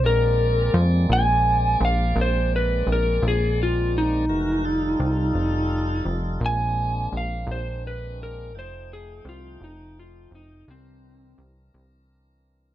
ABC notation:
X:1
M:12/8
L:1/8
Q:3/8=56
K:Bb
V:1 name="Electric slide guitar"
B2 z _a2 f c =B _B _A F E- | E4- E z _a2 f c =B _B | c _A F E F E C2 z4 |]
V:2 name="Tonewheel organ"
[_A,B,Cd]12 | [=E,_A,_GB] [=G,_EF=A]4- [G,EFA] [_A,B,CD]6 | [F,A,Eg]6 [=E,CDB]6 |]
V:3 name="Analog synth bass" clef=bass
B,,,2 F,, B,,,2 B,,, B,,,2 B,,, B,,,3 | F,,,2 C,, F,,,2 F,,, B,,,2 B,,, B,,,3 | F,,,2 C,, F,,,2 F,,, C,,2 C,, C,,3 |]